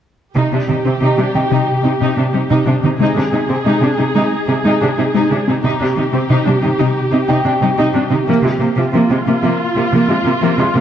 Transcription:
0.36 cello section C3, synth pluck C3, viola section D#4 G4
0.53 cello section C3, synth pluck C4, viola section D4
0.69 cello section C3, synth pluck D#3, viola section D#4
0.85 cello section C3, synth pluck C4, viola section C4
1.01 cello section C3, synth pluck C3, viola section D#4
1.18 cello section C3, synth pluck G3, viola section D4
1.35 cello section C3, synth pluck D#3, viola section D#4, grand piano G5
1.51 cello section C3, synth pluck C3, viola section D#4
1.84 cello section C3, synth pluck C4, viola section D#4
2.00 cello section C3, synth pluck C3, viola section D#4
2.17 cello section C3, synth pluck C4, viola section D4
2.33 cello section C3, synth pluck G3, viola section D#4
2.50 cello section C3, synth pluck C3, viola section D#4
2.66 cello section C3, synth pluck C4, viola section D4
2.83 cello section C3, synth pluck D#3, viola section D#4
2.99 cello section C3, synth pluck G#3, viola section D#4 G#4
3.16 cello section C3, viola section D4, synth pluck G#4
3.32 cello section C3, synth pluck C4, viola section D#4
3.49 cello section C3, viola section C4, synth pluck G#4
3.66 cello section C3, synth pluck G#3, viola section D#4
3.82 cello section C3, viola section D4, synth pluck D#4
3.99 cello section C3, synth pluck C4, viola section D#4
4.15 cello section C3, synth pluck G#3, viola section D#4
4.48 cello section C3, viola section D#4, synth pluck G#4
4.64 cello section C3, synth pluck G#3, viola section D#4
4.81 cello section C3, viola section D4, synth pluck G#4
4.97 cello section C3, synth pluck D#4, viola section D#4
5.14 cello section C3, synth pluck G#3, viola section D#4
5.30 cello section C3, viola section D4, synth pluck G#4
5.47 cello section C3, synth pluck C4, viola section D#4
5.63 cello section C3, synth pluck C3, viola section D#4 G4, grand piano A#5
5.81 cello section C3, synth pluck C4, viola section D4
5.97 cello section C3, synth pluck D#3, viola section D#4
6.13 cello section C3, viola section C4, synth pluck C4
6.29 cello section C3, synth pluck C3, viola section D#4
6.46 cello section C3, synth pluck G3, viola section D4
6.63 cello section C3, synth pluck D#3, viola section D#4
6.79 cello section C3, synth pluck C3, viola section D#4
7.12 cello section C3, synth pluck C4, viola section D#4
7.28 cello section C3, synth pluck C3, viola section D#4, grand piano G5
7.45 cello section C3, synth pluck C4, viola section D4
7.62 cello section C3, synth pluck G3, viola section D#4
7.78 cello section C3, synth pluck C3, viola section D#4
7.94 cello section C3, synth pluck C4, viola section D4
8.11 cello section C3, synth pluck D#3, viola section D#4
8.27 cello section C3, synth pluck F3, viola section A#3
8.44 cello section C3, viola section G#3, synth pluck F4
8.61 cello section C3, viola section A#3, synth pluck A#3
8.77 cello section C3, viola section F3, synth pluck F4
8.94 cello section C3, synth pluck F3, viola section A#3 F4
9.10 cello section C3, viola section G#3, synth pluck C4
9.27 cello section C3, viola section A#3, synth pluck A#3
9.44 cello section C3, synth pluck F3, viola section A#3
9.76 cello section C3, viola section A#3, synth pluck F4
9.93 cello section C3, synth pluck F3, viola section A#3
10.09 cello section C3, viola section G#3, synth pluck F4
10.25 cello section C3, viola section A#3, synth pluck C4
10.42 cello section C3, synth pluck F3, viola section A#3
10.58 cello section C3, viola section G#3, synth pluck F4, grand piano C6
10.75 cello section C3, viola section A#3, synth pluck A#3

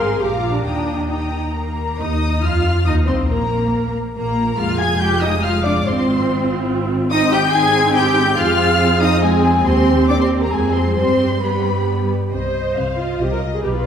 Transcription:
Already playing: double bass section G#1, cello section G#2, violin section F5 C6
0.00 viola section G#4
0.20 double bass section A#1, cello section A#2, viola section G4, violin section F5 A#5 D6
0.37 viola section F4
0.52 viola section D4
0.65 double bass section D#2, cello section D#3, viola section D4, violin section G5 A#5 D#6
1.08 viola section D#4, violin section G5 A#5 D#6
1.55 cello section A#3, violin section A#4 A#5
1.98 double bass section D#2, cello section D#4, viola section D#4, violin section D#5 D#6
2.43 double bass section F2, cello section F4, viola section F4, violin section F5 F6
2.85 double bass section D#2, cello section D#4, viola section D#4, violin section D#5 D#6
3.06 double bass section C2, cello section C4, viola section C4, violin section C5 C6
3.28 double bass section A#1, cello section A#3, viola section A#3, violin section A#4 A#5
4.15 double bass section A#1, cello section A#3, viola section A#3, violin section A#4 A#5
4.58 double bass section F1, viola section G#3 F4, cello section F4, violin section F5 F6
4.78 cello section G#4, violin section G#5 G#6
4.99 cello section G4, violin section G5 G6
5.21 cello section D#4, violin section D#5 D#6
5.42 viola section G#3 F4, cello section F4, violin section F5 F6
5.64 cello section D4, violin section D5 D6
5.85 double bass section G#1, viola section C4 F4, cello section C4, violin section C5 C6
7.10 viola section C4 D#4, cello section D#4, violin section D#5 D#6
7.32 cello section G4, violin section G5 G6
7.51 viola section C4 D#4, cello section G#4, violin section G#5 G#6
7.93 cello section G4, violin section G5 G6
8.36 double bass section F2, viola section C4 G#4, cello section F4, violin section F5 F6
9.01 cello section D#4, violin section D#5 D#6
9.22 cello section G#3, viola section C4 G#4, violin section G#4 G#5
9.65 double bass section D#2, cello section C4, viola section C4 G4, violin section C5 C6
10.08 cello section D4, violin section D5 D6
10.19 cello section C4, violin section C5 C6
10.41 cello section A#3, violin section A#4 A#5
10.52 double bass section F2, cello section G#3, viola section C4 G#4, violin section G#4 G#5
10.75 cello section C4, violin section C5 C6
10.97 double bass section G2, viola section G3 G4, cello section C4, violin section C5 C6
11.41 viola section G3 G4, cello section B3, violin section B4 B5
12.31 double bass section C2, cello section C3, viola section C5, violin section C5 D#5
12.55 violin section D#5
12.76 double bass section C2, cello section C3, violin section C5 F5
12.98 viola section F4, violin section D#5
13.19 double bass section C2, cello section C3, viola section G4, violin section C5 D#5
13.32 viola section A#4
13.41 violin section D#5
13.53 viola section G#4
13.62 double bass section B1, cello section B2, viola section G4, violin section B4
13.75 viola section F4

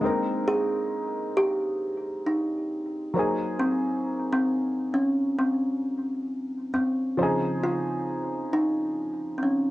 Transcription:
Already playing: kalimba D#4
0.01 felt piano G#3 A#3 C4
0.05 felt piano D#4 A#4
0.47 kalimba G#4
1.37 kalimba G4
2.26 kalimba D#4
3.14 felt piano F#3 A#3 D#4 C5
3.19 felt piano G#4
3.59 kalimba C4
4.33 kalimba C4
4.94 kalimba C#4
5.38 kalimba C4
6.74 kalimba C4
7.17 felt piano C#3 F3 C5
7.21 felt piano D#4 G#4
7.64 kalimba F4
8.53 kalimba D#4
9.38 kalimba C4
9.43 kalimba C#4

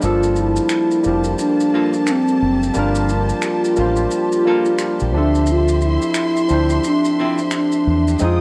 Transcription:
0.00 fingered electric bass G1, tine electric piano F3 G3 A#3 D4, string section A#3 G4 A5, maracas
0.04 soft synth lead F4, tine electric piano A4
0.23 maracas
0.36 soft synth lead E4, maracas
0.56 maracas
0.69 finger snap, maracas
0.91 maracas
1.03 fingered electric bass F1, tine electric piano F3 G3 A#3 D4, maracas
1.08 tine electric piano G4
1.24 maracas
1.39 soft synth lead D4, maracas
1.60 maracas
1.74 hollow-body jazz guitar A#3 F4 A4
1.93 maracas
2.07 soft synth lead C4, finger snap, maracas
2.28 maracas
2.42 fingered electric bass F#1
2.63 maracas
2.74 fingered electric bass G1, tine electric piano G3 A#3 D4 F4, soft synth lead D4, maracas
2.79 tine electric piano A#4
2.95 maracas
3.09 soft synth lead F4, maracas
3.29 maracas
3.42 finger snap, maracas
3.64 maracas
3.76 fingered electric bass A1, tine electric piano G3 A#3 D4 F4, maracas
3.81 tine electric piano C5
3.96 maracas
4.11 maracas
4.32 maracas
4.45 tine electric piano G3 A#3 D4 F4, hollow-body jazz guitar A#3 F4 A4
4.49 tine electric piano A#4
4.65 maracas
4.79 finger snap, maracas
5.00 fingered electric bass A#1, maracas
5.12 fingered electric bass D2, tine electric piano F3 C4 D4, string section E5 C6
5.17 soft synth lead D4, tine electric piano A4 E5
5.35 maracas
5.46 maracas
5.51 soft synth lead F4
5.68 maracas
5.81 soft synth lead E4, maracas
6.02 maracas
6.14 finger snap, maracas
6.37 maracas
6.49 fingered electric bass D2, tine electric piano F3 C4 D4 E4, maracas
6.54 tine electric piano C5
6.70 maracas
6.84 soft synth lead D4, maracas
7.05 maracas
7.20 hollow-body jazz guitar F3 C4 E4
7.38 maracas
7.51 finger snap, maracas
7.56 soft synth lead D4
7.72 maracas
7.87 fingered electric bass E2
8.08 maracas
8.19 fingered electric bass F2, tine electric piano G#3 C4 D#4 F4, string section G#4 G5 D#6, maracas
8.24 soft synth lead F4, tine electric piano G#4

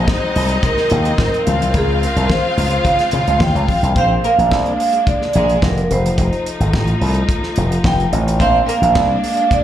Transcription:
Already playing: string section F#3 G#3 C4, violin section D#4 D#5, vibraphone C5
0.08 kick, snare, high conga
0.36 slap bass C2, open hi-hat
0.49 closed hi-hat
0.63 vibraphone A#4, kick, closed hi-hat, muted conga, low conga
0.77 snare
0.90 slap bass D#2, closed hi-hat, muted conga, low conga
1.05 closed hi-hat
1.18 slap bass G#2, kick, snare, high conga
1.34 closed hi-hat
1.46 slap bass C#2, string section C#3 G#3 F4, violin section F4 F5, closed hi-hat, high conga
1.61 slap bass C2, closed hi-hat, high conga
1.74 slap bass C#2, vibraphone G#4, kick, closed hi-hat, muted conga
2.03 vibraphone A#4, closed hi-hat
2.16 slap bass C2, closed hi-hat
2.30 vibraphone C5, kick, snare, high conga
2.57 slap bass C#2, open hi-hat
2.71 closed hi-hat
2.85 slap bass C#3, vibraphone F5, kick, closed hi-hat
2.99 snare, closed hi-hat
3.11 slap bass C#3, closed hi-hat, muted conga, low conga
3.27 slap bass C#2, closed hi-hat
3.40 slap bass D#2, vibraphone G5, kick, snare, high conga
3.55 slap bass C#2, closed hi-hat
3.68 kick, open hi-hat, high conga
3.83 slap bass C2, closed hi-hat
3.96 slap bass A#1, string section G#3 A#3 D4, violin section C4 C5, vibraphone F5, kick, closed hi-hat, muted conga
4.24 violin section A#3 A#4, vibraphone F5, closed hi-hat
4.38 slap bass A#1, closed hi-hat
4.51 slap bass C2, kick, snare, high conga
4.66 closed hi-hat
4.80 open hi-hat
4.93 closed hi-hat
5.07 vibraphone D5, kick, closed hi-hat, muted conga, low conga
5.22 snare
5.33 slap bass A#1, violin section G#3 G#4, closed hi-hat, muted conga, low conga
5.49 closed hi-hat
5.62 slap bass F1, vibraphone A#4, kick, snare, high conga
5.78 closed hi-hat
5.90 slap bass F1, string section F3 A3 D#4, vibraphone C5, closed hi-hat, high conga
6.06 closed hi-hat
6.18 slap bass F1, kick, closed hi-hat, muted conga
6.33 closed hi-hat
6.46 closed hi-hat
6.60 slap bass G#1, closed hi-hat
6.73 slap bass A1, kick, snare, high conga
6.87 closed hi-hat
7.01 slap bass C2, open hi-hat
7.14 closed hi-hat
7.29 kick, closed hi-hat
7.43 snare
7.56 slap bass F1, closed hi-hat, muted conga, low conga
7.72 closed hi-hat
7.84 slap bass F1, vibraphone G5, kick, snare, high conga
8.00 closed hi-hat
8.12 slap bass A1, closed hi-hat, high conga
8.28 closed hi-hat
8.39 slap bass A#1, string section G#3 A#3 D4, violin section C4 C5, vibraphone F5, kick, closed hi-hat, muted conga
8.67 violin section A#3 A#4, vibraphone F5, closed hi-hat
8.82 slap bass A#1, closed hi-hat
8.95 slap bass C2, kick, snare, clap, high conga
9.24 open hi-hat
9.37 closed hi-hat
9.51 vibraphone D5, kick, closed hi-hat, muted conga, low conga

